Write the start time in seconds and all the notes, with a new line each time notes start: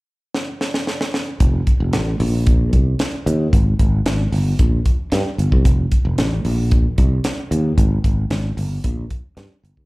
0.35 snare
0.61 snare
0.74 snare
0.87 snare
1.01 snare
1.14 snare
1.40 F1, kick, closed hi-hat
1.67 kick, closed hi-hat
1.80 F1
1.93 A1, snare, closed hi-hat
2.20 A#1, open hi-hat
2.47 kick, closed hi-hat
2.73 C2, kick, closed hi-hat
2.99 snare, closed hi-hat
3.26 D#2, closed hi-hat
3.53 G#1, kick, closed hi-hat
3.79 G#1, kick, closed hi-hat
4.06 G#1, snare, closed hi-hat
4.32 G1, open hi-hat
4.59 A#1, kick, closed hi-hat
4.86 kick, closed hi-hat
5.12 G2, snare, closed hi-hat
5.38 G1, closed hi-hat
5.52 C2, kick
5.65 F1, kick, closed hi-hat
5.92 kick, closed hi-hat
6.05 F1
6.18 A1, snare, closed hi-hat
6.45 A#1, open hi-hat
6.71 kick, closed hi-hat
6.98 C2, kick, closed hi-hat
7.24 snare, closed hi-hat
7.51 D#2, closed hi-hat
7.78 G#1, kick, closed hi-hat
8.04 G#1, kick, closed hi-hat
8.30 G#1, snare, closed hi-hat
8.57 G1, open hi-hat
8.84 A#1, kick, closed hi-hat
9.10 kick, closed hi-hat
9.37 G2, snare, closed hi-hat
9.63 G1, closed hi-hat
9.77 D2, kick